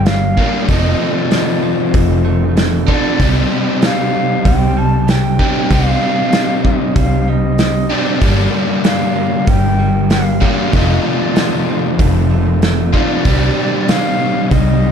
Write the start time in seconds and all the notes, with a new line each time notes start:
Already playing: G1 G2 D3 G3 A#3 D4 A#4
0.05 G3 F5, snare, open hi-hat
0.38 G2 D3 G3 A#3 D4 A#4, kick
0.67 F1 F2 C3 D#3 F3 A3 C4 D#4 A4 D#5, kick, open hi-hat
1.00 A3 D5
1.31 D#4, snare, open hi-hat
1.63 C4
1.94 F1 A3, kick, open hi-hat
2.25 A3
2.57 A3, snare, open hi-hat
2.87 F2 C3 D#3 F3 A3 C4 D#4 A4 D5, kick
3.20 C2 C3 G3 C4 D#4 G4, kick, open hi-hat
3.51 G3
3.82 D#4 F5, snare, open hi-hat
4.45 C2 G3 G5, kick, open hi-hat
4.77 G3 A5
5.08 G3 G5, snare, open hi-hat
5.39 C3 G3 C4 D#4 G4, kick
5.70 C2 C3 G3 C4 D#4 G4 F5, kick, open hi-hat
6.02 G3
6.33 D#4, snare, open hi-hat
6.65 D#5, kick
6.96 C2 G3 F5, kick, open hi-hat
7.28 G3 D#5
7.58 G3, snare, open hi-hat
7.90 C3 G3 C4 D4 D#4 G4 D5
8.21 G1 G2 D3 G3 A#3 D4 G4, kick, open hi-hat
8.52 G3
8.84 D4 F5, snare, open hi-hat
9.16 A#3
9.47 G1 G3 G5, kick, open hi-hat
9.79 G3
10.10 G3 F5, snare, open hi-hat
10.41 G2 D3 G3 A#3 D4 G4, kick
10.73 F1 F2 C3 D#3 A3 D#4 F4 D#5, kick, open hi-hat
11.04 A3 D5
11.36 D#4, snare, open hi-hat
11.69 C4
11.99 F1 A3, kick, open hi-hat
12.31 A3
12.62 A3, snare, open hi-hat
12.93 F2 C3 D#3 A3 C4 D#4 F4 D5, kick
13.24 C2 C3 D#3 G3 C4 G4, kick, open hi-hat
13.28 D#4
13.58 G3
13.88 D#4 F5, snare, open hi-hat
14.51 C2 G3 D#5, kick, open hi-hat
14.83 G3